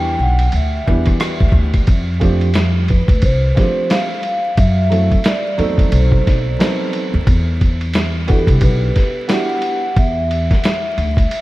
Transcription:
Already playing: upright bass E2, grand piano E3 G3 B3 D4 G4, vibraphone G5
0.19 upright bass B1, vibraphone F#5
0.39 ride
0.52 upright bass D2, vibraphone E5, ride
0.86 upright bass E2, grand piano E3 G3 B3 D4 G4, kick, cross-stick
1.05 kick, cross-stick, ride
1.20 cross-stick, hi-hat pedal, ride
1.40 upright bass D2, kick
1.52 upright bass D2, kick
1.74 kick, ride
1.87 upright bass F2, kick, ride
2.20 grand piano F3 A3 C4 D4 G4, kick, ride
2.41 ride
2.54 snare, hi-hat pedal, ride
2.88 vibraphone B4, kick, ride
3.08 upright bass D2, kick, ride
3.22 upright bass C2, vibraphone C5, kick, ride
3.55 grand piano F3 G#3 C4 D4 G4, kick, snare, ride
3.62 grand piano A3
3.90 vibraphone F5, snare, hi-hat pedal, ride
4.23 ride
4.57 upright bass F#2, vibraphone E5, kick, ride
4.90 grand piano F#3 A3 C4 E4 A4, ride
5.12 kick, ride
5.24 vibraphone D5, snare, hi-hat pedal, ride
5.58 upright bass E2, grand piano F#3 A3 C4 D#4 A4, ride
5.78 kick, ride
5.92 upright bass B1, vibraphone C5, ride
6.12 kick
6.27 upright bass B1, kick, snare, ride
6.59 grand piano F#3 B3 C4 D#4 A4, snare, hi-hat pedal, ride
6.93 ride
7.14 upright bass D#2
7.27 upright bass E2, kick, ride
7.61 kick, ride
7.81 ride
7.93 snare, hi-hat pedal, ride
8.27 grand piano B3 D4 E4 F#4, vibraphone A4, kick, ride
8.36 grand piano G4
8.47 upright bass C2, kick, ride
8.61 upright bass B1, vibraphone B4, kick, ride
8.96 kick, snare, ride
9.28 grand piano B3 D4 E4 F#4 G4, vibraphone F#5, snare, hi-hat pedal, ride
9.62 ride
9.96 upright bass E2, vibraphone E5, kick, ride
10.31 ride
10.51 kick, snare, ride
10.64 snare, hi-hat pedal, ride
10.98 upright bass D2, ride
11.17 kick, ride
11.31 ride

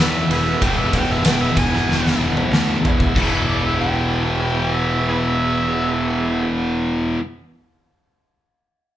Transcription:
Already playing: distorted electric guitar E2 B2 E3
0.00 picked electric bass E2, harmonica E5, snare
0.29 picked electric bass E1, tonewheel organ B3 E4 G#4, harmonica G#4 B4 E5, ride
0.60 picked electric bass E1, distorted electric guitar E2 B2 E3, tonewheel organ B3 E4 G#4, harmonica G5, kick, ride
0.78 harmonica E5
0.93 picked electric bass E1, harmonica G5, kick, ride
1.11 harmonica E5
1.24 picked electric bass E1, harmonica G5, snare, ride
1.41 harmonica E5
1.56 picked electric bass E1, harmonica G#5, kick, ride
1.75 snare
1.87 picked electric bass E1, snare
2.07 snare
2.19 picked electric bass E1
2.37 mid tom
2.51 picked electric bass D2, snare
2.83 picked electric bass E1, tonewheel organ B3 E4 G#4, floor tom
3.00 kick
3.15 picked electric bass E1, distorted electric guitar E2 B2, tonewheel organ B3 E4 G#4, kick, crash
3.19 distorted electric guitar E3
3.48 harmonica D5
3.66 harmonica E5
3.80 harmonica G5
4.43 harmonica G5
4.75 harmonica E5
5.08 harmonica G#4 B4 E5

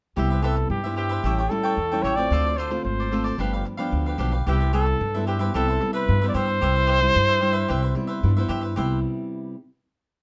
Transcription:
0.16 upright bass C2, nylon-string guitar C3 G3 B3 E4, cavaquinho G4 B4 C5 E5, trumpet G4
0.30 cavaquinho B4 C5 E5
0.42 nylon-string guitar G3 B3 E4, cavaquinho G4 B4 C5 E5, trumpet A4
0.56 muted cavaquinho stroke
0.70 upright bass G2, nylon-string guitar G2, trumpet G4
0.84 nylon-string guitar G3 B3 E4, cavaquinho B4 C5 E5
0.96 cavaquinho G4 B4 C5 E5, trumpet G4
1.09 cavaquinho B4 C5 E5
1.23 upright bass A1, nylon-string guitar A2 G3 C#4 E4, cavaquinho G4 A4 C#5 G5
1.38 cavaquinho A4 C#5 G5
1.50 nylon-string guitar G3 C#4 E4, trumpet A4, muted cavaquinho stroke
1.63 cavaquinho A4 C#5 G5
1.77 upright bass E2, nylon-string guitar E3
1.92 nylon-string guitar G3 C#4 E4, cavaquinho A4 C#5 G5
2.03 upright bass A1, cavaquinho G4 A4 C#5 G5, trumpet C#5
2.16 nylon-string guitar A3 C4 F4, cavaquinho A4 C#5 G5, trumpet D5
2.30 upright bass D2, nylon-string guitar D3, cavaquinho F4 A4 C5 D5
2.46 cavaquinho A4 C5 D5
2.57 cavaquinho F4 A4 C5 D5, trumpet C5
2.71 nylon-string guitar A3 C4 F4, muted cavaquinho stroke
2.85 upright bass G#1, trumpet C5
3.00 cavaquinho A4 C5 D5
3.12 nylon-string guitar A3 C4 F4, cavaquinho F4 A4 C5 D5
3.24 cavaquinho A4 C5 D5
3.38 upright bass G1, nylon-string guitar G2 F3 B3 D4, cavaquinho D4 G4 B4 F5
3.53 cavaquinho G4 B4 F5
3.65 muted cavaquinho stroke
3.77 nylon-string guitar F3 B3 D4, cavaquinho G4 B4 F5
3.92 upright bass D2, nylon-string guitar D3
4.06 cavaquinho G4 B4 F5
4.18 upright bass B1, nylon-string guitar F3 B3 D4, cavaquinho D4 G4 B4 F5
4.31 cavaquinho G4 B4 F5
4.47 upright bass C2, nylon-string guitar C3 G3 B3 E4, cavaquinho G4 B4 C5 E5, trumpet G4
4.60 cavaquinho B4 C5 E5
4.73 nylon-string guitar G3 B3 E4, cavaquinho G4 B4 C5 E5, trumpet A4
4.86 muted cavaquinho stroke
5.01 upright bass G2, nylon-string guitar G2
5.14 nylon-string guitar G3 B3 E4, cavaquinho B4 C5 E5
5.27 cavaquinho G4 B4 C5 E5, trumpet G4
5.39 nylon-string guitar G3 B3 E4, trumpet G4, cavaquinho B4 C5 E5
5.54 upright bass C2, nylon-string guitar C3 G3 B3 E4, cavaquinho G4 B4 C5 E5, trumpet A4
5.68 cavaquinho B4 C5 E5
5.81 nylon-string guitar G3 B3 E4, muted cavaquinho stroke
5.93 trumpet B4, cavaquinho B4 C5 E5
6.09 upright bass G2, nylon-string guitar G2
6.22 nylon-string guitar G3 B3 E4, cavaquinho B4 C5 E5
6.28 trumpet D5
6.34 upright bass G2, cavaquinho G4 B4 C5 E5, trumpet C5
6.46 cavaquinho B4 E5
6.61 upright bass C2, nylon-string guitar C3 G3 E4, cavaquinho G4 B4 C5 E5
6.75 cavaquinho B4 C5 E5
6.87 cavaquinho G4 B4 C5 E5
7.00 nylon-string guitar G3 E4, muted cavaquinho stroke
7.16 upright bass G2, nylon-string guitar G2
7.28 cavaquinho B4 C5 E5
7.41 nylon-string guitar G3 E4, cavaquinho G4 B4 C5 E5
7.53 cavaquinho B4 C5 E5
7.68 upright bass C2, nylon-string guitar C3, cavaquinho G4 B4 C5 E5
7.82 cavaquinho B4 C5 E5
7.95 nylon-string guitar G3 B3 E4, muted cavaquinho stroke
8.07 cavaquinho B4 C5 E5
8.23 upright bass G2, nylon-string guitar G2 G3 B3 E4
8.37 nylon-string guitar G3 B3 E4, cavaquinho B4 C5 E5
8.49 upright bass G2, cavaquinho G4 B4 C5 E5
8.61 cavaquinho B4 C5 E5
8.76 upright bass C2, nylon-string guitar C3 G3 B3 E4, cavaquinho G4 B4 C5 E5

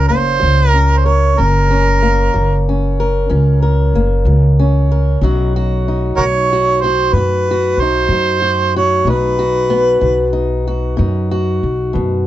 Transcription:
Already playing: steel-string acoustic guitar C#4 A#4
0.08 upright bass F#1, steel-string acoustic guitar A#3, harmonica C5
0.40 upright bass C#2, steel-string acoustic guitar F#3
0.68 harmonica A#4
0.73 steel-string acoustic guitar C#4
0.97 harmonica C5
1.05 steel-string acoustic guitar A#4, harmonica C#5
1.38 upright bass F#1, steel-string acoustic guitar F#2 C#4, harmonica A#4
1.71 steel-string acoustic guitar C#4
2.02 steel-string acoustic guitar A#3
2.34 upright bass F#1, steel-string acoustic guitar F#3
2.69 steel-string acoustic guitar C#4
3.00 steel-string acoustic guitar A#4
3.29 upright bass C#2, steel-string acoustic guitar F#2 C#4
3.62 steel-string acoustic guitar A#4
3.94 upright bass F#1, steel-string acoustic guitar A#3
4.25 upright bass C#2, steel-string acoustic guitar F#3
4.59 steel-string acoustic guitar C#4
4.92 steel-string acoustic guitar A#4
5.21 upright bass B1, steel-string acoustic guitar B2 F#3 D#4 F#4
5.56 steel-string acoustic guitar F#4
5.88 steel-string acoustic guitar D#4
6.17 upright bass B1, steel-string acoustic guitar F#3, harmonica F#4 A#4 C#5
6.53 steel-string acoustic guitar F#4
6.81 steel-string acoustic guitar F#4, harmonica C5
7.13 upright bass F#2, steel-string acoustic guitar B2, harmonica B4
7.17 steel-string acoustic guitar F#4
7.51 steel-string acoustic guitar F#4
7.77 upright bass B1, harmonica C5
7.82 steel-string acoustic guitar D#4
8.09 upright bass F#2, steel-string acoustic guitar F#3
8.42 steel-string acoustic guitar F#4
8.76 steel-string acoustic guitar F#4, harmonica C#5
9.05 upright bass B1, steel-string acoustic guitar B2 D#4
9.10 harmonica B4
9.39 steel-string acoustic guitar F#4
9.70 steel-string acoustic guitar B3
10.01 upright bass B1, steel-string acoustic guitar F#3
10.33 steel-string acoustic guitar D#4
10.67 steel-string acoustic guitar F#4
10.97 upright bass F#2, steel-string acoustic guitar B2 D#4
11.31 steel-string acoustic guitar F#4
11.63 upright bass B1
11.93 upright bass F#2, steel-string acoustic guitar B2

